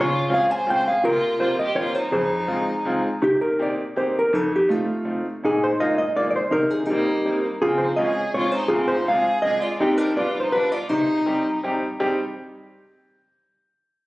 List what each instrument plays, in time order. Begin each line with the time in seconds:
Already playing: upright piano C#3, violin F4
0.00 hollow-body jazz guitar F4 C#5
0.29 upright piano G#3 C4 C#4 F4, violin G#4
0.34 hollow-body jazz guitar F5
0.51 violin C5, hollow-body jazz guitar G#5
0.66 upright piano G#3 C4 C#4 F4
0.70 violin C5, hollow-body jazz guitar G5
0.88 violin G#4, hollow-body jazz guitar F5
1.04 upright piano C3, hollow-body jazz guitar F4 A#4, violin F4
1.40 upright piano G3 A#3 C4 F4, violin F4, hollow-body jazz guitar C5
1.59 violin G4, hollow-body jazz guitar D#5
1.76 upright piano G3 A#3 C4 F4, violin F4, hollow-body jazz guitar C#5
1.95 violin D#4, hollow-body jazz guitar C5
2.12 upright piano F2, violin D#4, hollow-body jazz guitar G#4 C5
2.48 upright piano G#3 C4 D#4 F4
2.85 upright piano G#3 C4 D#4 F4
3.22 upright piano C3, hollow-body jazz guitar D#4 G4
3.41 hollow-body jazz guitar A#4
3.59 upright piano A#3 C4 D#4 G4, hollow-body jazz guitar D5
3.96 upright piano A#3 C4 D#4 G4, hollow-body jazz guitar C5
4.19 hollow-body jazz guitar A#4
4.33 upright piano F2, hollow-body jazz guitar D#4 A4
4.56 hollow-body jazz guitar G4
4.69 upright piano A3 C4 D#4 F4, hollow-body jazz guitar A3 F4
5.05 upright piano A3 C4 D#4 F4
5.43 upright piano A#2, hollow-body jazz guitar D#4 G#4
5.64 hollow-body jazz guitar C5
5.80 upright piano G#3 A#3 D#4 F4, hollow-body jazz guitar D#5
5.98 hollow-body jazz guitar D#5
6.15 upright piano G#3 A#3 D#4 F4, hollow-body jazz guitar D5
6.31 hollow-body jazz guitar D5
6.36 hollow-body jazz guitar C5
6.51 upright piano C3, hollow-body jazz guitar D#4 A#4
6.70 hollow-body jazz guitar G#4
6.85 upright piano A#3, hollow-body jazz guitar D#4 G4
6.90 upright piano G3 C4 D#4, violin A#3
7.25 upright piano G3 A#3 C4 D#4
7.62 upright piano C#3, violin C4, hollow-body jazz guitar F4 G#4
7.78 hollow-body jazz guitar C5
7.84 violin D#4
7.96 upright piano G#3 C4 C#4 F4, hollow-body jazz guitar D#5
8.02 violin G#4
8.34 upright piano G#3 C4 C#4 F4, violin F4, hollow-body jazz guitar C#5
8.52 violin D#4, hollow-body jazz guitar C5
8.68 hollow-body jazz guitar F4 G#4
8.73 upright piano D2, violin C4
8.88 violin D#4, hollow-body jazz guitar C5
9.08 upright piano G#3 C4 D4 F4, violin G#4, hollow-body jazz guitar F5
9.42 upright piano G#3 C4 D4 F4, violin G#4, hollow-body jazz guitar D#5
9.61 violin F4, hollow-body jazz guitar D5
9.79 upright piano G3 C4 D#4 G4, violin C4, hollow-body jazz guitar D#4 G4
9.98 violin D4, hollow-body jazz guitar A#4
10.17 upright piano G3 B3 D4 F4, violin F4, hollow-body jazz guitar B4 D5
10.40 violin D#4, hollow-body jazz guitar C5
10.52 upright piano G3 B3 D4 F4, violin D4, hollow-body jazz guitar B4
10.72 violin F4, hollow-body jazz guitar D5
10.89 upright piano C3, hollow-body jazz guitar D#4 C5, violin D#4
11.26 upright piano G3 C4 D#4 G4
11.63 upright piano G3 C4 D#4 G4
12.00 upright piano G3 C4 D#4 G4